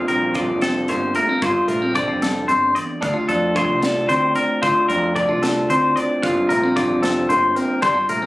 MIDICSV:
0, 0, Header, 1, 5, 480
1, 0, Start_track
1, 0, Tempo, 534283
1, 1276, Time_signature, 6, 3, 24, 8
1, 7422, End_track
2, 0, Start_track
2, 0, Title_t, "Clean electric guitar"
2, 0, Program_c, 0, 27
2, 74, Note_on_c, 0, 70, 62
2, 319, Note_off_c, 0, 70, 0
2, 319, Note_on_c, 0, 74, 68
2, 555, Note_off_c, 0, 74, 0
2, 558, Note_on_c, 0, 69, 77
2, 798, Note_off_c, 0, 69, 0
2, 798, Note_on_c, 0, 72, 62
2, 1035, Note_off_c, 0, 72, 0
2, 1038, Note_on_c, 0, 70, 67
2, 1277, Note_off_c, 0, 70, 0
2, 1277, Note_on_c, 0, 72, 81
2, 1511, Note_off_c, 0, 72, 0
2, 1511, Note_on_c, 0, 70, 64
2, 1752, Note_off_c, 0, 70, 0
2, 1756, Note_on_c, 0, 74, 69
2, 1996, Note_off_c, 0, 74, 0
2, 1998, Note_on_c, 0, 69, 75
2, 2228, Note_on_c, 0, 72, 63
2, 2237, Note_off_c, 0, 69, 0
2, 2471, Note_off_c, 0, 72, 0
2, 2471, Note_on_c, 0, 74, 66
2, 2712, Note_off_c, 0, 74, 0
2, 2712, Note_on_c, 0, 77, 85
2, 2948, Note_off_c, 0, 77, 0
2, 2952, Note_on_c, 0, 69, 69
2, 3197, Note_off_c, 0, 69, 0
2, 3197, Note_on_c, 0, 72, 72
2, 3432, Note_off_c, 0, 72, 0
2, 3432, Note_on_c, 0, 69, 78
2, 3669, Note_off_c, 0, 69, 0
2, 3672, Note_on_c, 0, 72, 67
2, 3910, Note_off_c, 0, 72, 0
2, 3914, Note_on_c, 0, 70, 64
2, 4151, Note_off_c, 0, 70, 0
2, 4154, Note_on_c, 0, 72, 85
2, 4385, Note_off_c, 0, 72, 0
2, 4389, Note_on_c, 0, 70, 64
2, 4628, Note_off_c, 0, 70, 0
2, 4632, Note_on_c, 0, 74, 68
2, 4874, Note_off_c, 0, 74, 0
2, 4874, Note_on_c, 0, 69, 79
2, 5115, Note_off_c, 0, 69, 0
2, 5120, Note_on_c, 0, 72, 64
2, 5352, Note_off_c, 0, 72, 0
2, 5352, Note_on_c, 0, 74, 65
2, 5592, Note_off_c, 0, 74, 0
2, 5592, Note_on_c, 0, 77, 81
2, 5831, Note_on_c, 0, 70, 66
2, 5834, Note_off_c, 0, 77, 0
2, 6073, Note_off_c, 0, 70, 0
2, 6074, Note_on_c, 0, 74, 66
2, 6312, Note_on_c, 0, 69, 78
2, 6315, Note_off_c, 0, 74, 0
2, 6546, Note_off_c, 0, 69, 0
2, 6550, Note_on_c, 0, 72, 63
2, 6788, Note_off_c, 0, 72, 0
2, 6788, Note_on_c, 0, 70, 70
2, 7025, Note_off_c, 0, 70, 0
2, 7029, Note_on_c, 0, 72, 85
2, 7268, Note_off_c, 0, 72, 0
2, 7272, Note_on_c, 0, 70, 69
2, 7422, Note_off_c, 0, 70, 0
2, 7422, End_track
3, 0, Start_track
3, 0, Title_t, "Clean electric guitar"
3, 0, Program_c, 1, 27
3, 0, Note_on_c, 1, 43, 69
3, 0, Note_on_c, 1, 50, 56
3, 0, Note_on_c, 1, 58, 56
3, 0, Note_on_c, 1, 65, 62
3, 80, Note_on_c, 1, 60, 51
3, 294, Note_off_c, 1, 50, 0
3, 304, Note_on_c, 1, 50, 56
3, 312, Note_off_c, 1, 65, 0
3, 315, Note_on_c, 1, 65, 54
3, 558, Note_off_c, 1, 60, 0
3, 562, Note_on_c, 1, 60, 50
3, 792, Note_off_c, 1, 50, 0
3, 800, Note_off_c, 1, 58, 0
3, 803, Note_on_c, 1, 50, 51
3, 809, Note_on_c, 1, 58, 48
3, 1044, Note_off_c, 1, 60, 0
3, 1048, Note_on_c, 1, 57, 52
3, 1160, Note_off_c, 1, 57, 0
3, 1160, Note_on_c, 1, 60, 43
3, 1244, Note_off_c, 1, 43, 0
3, 1250, Note_off_c, 1, 50, 0
3, 1254, Note_off_c, 1, 58, 0
3, 1278, Note_off_c, 1, 60, 0
3, 1281, Note_on_c, 1, 43, 62
3, 1284, Note_off_c, 1, 65, 0
3, 1288, Note_on_c, 1, 65, 57
3, 1508, Note_on_c, 1, 57, 53
3, 1634, Note_off_c, 1, 57, 0
3, 1634, Note_on_c, 1, 60, 41
3, 1749, Note_on_c, 1, 50, 62
3, 1750, Note_off_c, 1, 65, 0
3, 1753, Note_on_c, 1, 62, 47
3, 1867, Note_off_c, 1, 62, 0
3, 1867, Note_on_c, 1, 65, 46
3, 1985, Note_off_c, 1, 43, 0
3, 1996, Note_on_c, 1, 43, 56
3, 2223, Note_off_c, 1, 43, 0
3, 2226, Note_on_c, 1, 41, 54
3, 2468, Note_off_c, 1, 41, 0
3, 2472, Note_on_c, 1, 40, 58
3, 2700, Note_off_c, 1, 65, 0
3, 2704, Note_on_c, 1, 62, 63
3, 2706, Note_off_c, 1, 40, 0
3, 2710, Note_on_c, 1, 38, 72
3, 2716, Note_off_c, 1, 60, 0
3, 2817, Note_off_c, 1, 62, 0
3, 2817, Note_on_c, 1, 65, 52
3, 2959, Note_on_c, 1, 62, 55
3, 3183, Note_off_c, 1, 65, 0
3, 3185, Note_off_c, 1, 50, 0
3, 3189, Note_on_c, 1, 50, 56
3, 3197, Note_on_c, 1, 65, 50
3, 3419, Note_off_c, 1, 62, 0
3, 3423, Note_on_c, 1, 62, 53
3, 3658, Note_on_c, 1, 45, 51
3, 3669, Note_on_c, 1, 60, 50
3, 3903, Note_off_c, 1, 62, 0
3, 3907, Note_on_c, 1, 62, 54
3, 4136, Note_off_c, 1, 38, 0
3, 4147, Note_on_c, 1, 38, 70
3, 4148, Note_off_c, 1, 45, 0
3, 4148, Note_off_c, 1, 65, 0
3, 4152, Note_on_c, 1, 65, 63
3, 4174, Note_off_c, 1, 60, 0
3, 4398, Note_off_c, 1, 62, 0
3, 4402, Note_on_c, 1, 62, 51
3, 4618, Note_off_c, 1, 50, 0
3, 4627, Note_on_c, 1, 50, 59
3, 4628, Note_off_c, 1, 65, 0
3, 4632, Note_off_c, 1, 62, 0
3, 4632, Note_on_c, 1, 62, 49
3, 4749, Note_off_c, 1, 62, 0
3, 4749, Note_on_c, 1, 65, 47
3, 4877, Note_on_c, 1, 62, 53
3, 5117, Note_on_c, 1, 45, 52
3, 5129, Note_on_c, 1, 60, 50
3, 5366, Note_off_c, 1, 62, 0
3, 5370, Note_on_c, 1, 62, 52
3, 5591, Note_off_c, 1, 38, 0
3, 5592, Note_off_c, 1, 65, 0
3, 5596, Note_off_c, 1, 45, 0
3, 5604, Note_on_c, 1, 43, 68
3, 5609, Note_on_c, 1, 65, 66
3, 5839, Note_off_c, 1, 62, 0
3, 5842, Note_on_c, 1, 57, 51
3, 5960, Note_off_c, 1, 57, 0
3, 5960, Note_off_c, 1, 60, 0
3, 5960, Note_on_c, 1, 60, 44
3, 6065, Note_off_c, 1, 50, 0
3, 6076, Note_on_c, 1, 50, 54
3, 6078, Note_off_c, 1, 65, 0
3, 6082, Note_on_c, 1, 65, 57
3, 6299, Note_off_c, 1, 60, 0
3, 6310, Note_on_c, 1, 60, 56
3, 6541, Note_off_c, 1, 50, 0
3, 6552, Note_on_c, 1, 50, 54
3, 6560, Note_on_c, 1, 58, 52
3, 6791, Note_off_c, 1, 60, 0
3, 6795, Note_on_c, 1, 60, 55
3, 7004, Note_off_c, 1, 50, 0
3, 7008, Note_off_c, 1, 58, 0
3, 7010, Note_off_c, 1, 43, 0
3, 7019, Note_on_c, 1, 43, 69
3, 7020, Note_off_c, 1, 65, 0
3, 7023, Note_on_c, 1, 62, 59
3, 7046, Note_off_c, 1, 60, 0
3, 7136, Note_off_c, 1, 62, 0
3, 7136, Note_on_c, 1, 65, 59
3, 7271, Note_on_c, 1, 57, 53
3, 7386, Note_off_c, 1, 57, 0
3, 7386, Note_on_c, 1, 60, 44
3, 7422, Note_off_c, 1, 43, 0
3, 7422, Note_off_c, 1, 60, 0
3, 7422, Note_off_c, 1, 65, 0
3, 7422, End_track
4, 0, Start_track
4, 0, Title_t, "Picked electric bass"
4, 0, Program_c, 2, 34
4, 82, Note_on_c, 2, 34, 91
4, 404, Note_off_c, 2, 34, 0
4, 443, Note_on_c, 2, 29, 73
4, 764, Note_off_c, 2, 29, 0
4, 808, Note_on_c, 2, 31, 81
4, 1019, Note_off_c, 2, 31, 0
4, 1277, Note_on_c, 2, 31, 80
4, 1385, Note_off_c, 2, 31, 0
4, 1513, Note_on_c, 2, 34, 86
4, 1839, Note_off_c, 2, 34, 0
4, 1875, Note_on_c, 2, 29, 80
4, 2200, Note_off_c, 2, 29, 0
4, 2238, Note_on_c, 2, 31, 77
4, 2454, Note_off_c, 2, 31, 0
4, 2714, Note_on_c, 2, 38, 83
4, 2823, Note_off_c, 2, 38, 0
4, 2953, Note_on_c, 2, 41, 91
4, 3279, Note_off_c, 2, 41, 0
4, 3317, Note_on_c, 2, 36, 79
4, 3641, Note_off_c, 2, 36, 0
4, 3677, Note_on_c, 2, 38, 81
4, 3893, Note_off_c, 2, 38, 0
4, 4159, Note_on_c, 2, 38, 89
4, 4266, Note_off_c, 2, 38, 0
4, 4399, Note_on_c, 2, 41, 91
4, 4722, Note_off_c, 2, 41, 0
4, 4764, Note_on_c, 2, 36, 80
4, 5085, Note_off_c, 2, 36, 0
4, 5114, Note_on_c, 2, 38, 80
4, 5331, Note_off_c, 2, 38, 0
4, 5603, Note_on_c, 2, 31, 85
4, 5708, Note_off_c, 2, 31, 0
4, 5841, Note_on_c, 2, 34, 91
4, 6163, Note_off_c, 2, 34, 0
4, 6202, Note_on_c, 2, 29, 75
4, 6523, Note_off_c, 2, 29, 0
4, 6554, Note_on_c, 2, 31, 88
4, 6771, Note_off_c, 2, 31, 0
4, 7036, Note_on_c, 2, 31, 84
4, 7143, Note_off_c, 2, 31, 0
4, 7273, Note_on_c, 2, 34, 94
4, 7422, Note_off_c, 2, 34, 0
4, 7422, End_track
5, 0, Start_track
5, 0, Title_t, "Drums"
5, 74, Note_on_c, 9, 42, 50
5, 164, Note_off_c, 9, 42, 0
5, 310, Note_on_c, 9, 42, 50
5, 318, Note_on_c, 9, 36, 66
5, 400, Note_off_c, 9, 42, 0
5, 408, Note_off_c, 9, 36, 0
5, 553, Note_on_c, 9, 42, 63
5, 560, Note_on_c, 9, 38, 92
5, 642, Note_off_c, 9, 42, 0
5, 650, Note_off_c, 9, 38, 0
5, 792, Note_on_c, 9, 42, 53
5, 882, Note_off_c, 9, 42, 0
5, 1030, Note_on_c, 9, 42, 50
5, 1119, Note_off_c, 9, 42, 0
5, 1276, Note_on_c, 9, 42, 66
5, 1278, Note_on_c, 9, 36, 92
5, 1366, Note_off_c, 9, 42, 0
5, 1368, Note_off_c, 9, 36, 0
5, 1513, Note_on_c, 9, 42, 52
5, 1602, Note_off_c, 9, 42, 0
5, 1754, Note_on_c, 9, 42, 56
5, 1758, Note_on_c, 9, 36, 69
5, 1844, Note_off_c, 9, 42, 0
5, 1848, Note_off_c, 9, 36, 0
5, 1996, Note_on_c, 9, 42, 67
5, 2003, Note_on_c, 9, 38, 93
5, 2086, Note_off_c, 9, 42, 0
5, 2093, Note_off_c, 9, 38, 0
5, 2235, Note_on_c, 9, 42, 55
5, 2325, Note_off_c, 9, 42, 0
5, 2479, Note_on_c, 9, 42, 57
5, 2569, Note_off_c, 9, 42, 0
5, 2717, Note_on_c, 9, 42, 74
5, 2718, Note_on_c, 9, 36, 89
5, 2807, Note_off_c, 9, 42, 0
5, 2808, Note_off_c, 9, 36, 0
5, 2954, Note_on_c, 9, 42, 58
5, 3044, Note_off_c, 9, 42, 0
5, 3197, Note_on_c, 9, 36, 73
5, 3199, Note_on_c, 9, 42, 57
5, 3287, Note_off_c, 9, 36, 0
5, 3289, Note_off_c, 9, 42, 0
5, 3436, Note_on_c, 9, 42, 76
5, 3443, Note_on_c, 9, 38, 93
5, 3526, Note_off_c, 9, 42, 0
5, 3533, Note_off_c, 9, 38, 0
5, 3678, Note_on_c, 9, 42, 56
5, 3768, Note_off_c, 9, 42, 0
5, 3912, Note_on_c, 9, 42, 55
5, 4002, Note_off_c, 9, 42, 0
5, 4157, Note_on_c, 9, 42, 70
5, 4158, Note_on_c, 9, 36, 102
5, 4247, Note_off_c, 9, 42, 0
5, 4248, Note_off_c, 9, 36, 0
5, 4399, Note_on_c, 9, 42, 52
5, 4489, Note_off_c, 9, 42, 0
5, 4635, Note_on_c, 9, 42, 53
5, 4638, Note_on_c, 9, 36, 68
5, 4725, Note_off_c, 9, 42, 0
5, 4728, Note_off_c, 9, 36, 0
5, 4877, Note_on_c, 9, 42, 71
5, 4884, Note_on_c, 9, 38, 94
5, 4966, Note_off_c, 9, 42, 0
5, 4974, Note_off_c, 9, 38, 0
5, 5121, Note_on_c, 9, 42, 56
5, 5211, Note_off_c, 9, 42, 0
5, 5363, Note_on_c, 9, 42, 50
5, 5453, Note_off_c, 9, 42, 0
5, 5601, Note_on_c, 9, 36, 96
5, 5606, Note_on_c, 9, 42, 73
5, 5691, Note_off_c, 9, 36, 0
5, 5696, Note_off_c, 9, 42, 0
5, 5842, Note_on_c, 9, 42, 57
5, 5932, Note_off_c, 9, 42, 0
5, 6079, Note_on_c, 9, 36, 73
5, 6082, Note_on_c, 9, 42, 54
5, 6169, Note_off_c, 9, 36, 0
5, 6171, Note_off_c, 9, 42, 0
5, 6317, Note_on_c, 9, 42, 72
5, 6324, Note_on_c, 9, 38, 96
5, 6407, Note_off_c, 9, 42, 0
5, 6414, Note_off_c, 9, 38, 0
5, 6558, Note_on_c, 9, 42, 59
5, 6648, Note_off_c, 9, 42, 0
5, 6795, Note_on_c, 9, 42, 55
5, 6885, Note_off_c, 9, 42, 0
5, 7028, Note_on_c, 9, 42, 76
5, 7034, Note_on_c, 9, 36, 104
5, 7118, Note_off_c, 9, 42, 0
5, 7124, Note_off_c, 9, 36, 0
5, 7268, Note_on_c, 9, 42, 61
5, 7358, Note_off_c, 9, 42, 0
5, 7422, End_track
0, 0, End_of_file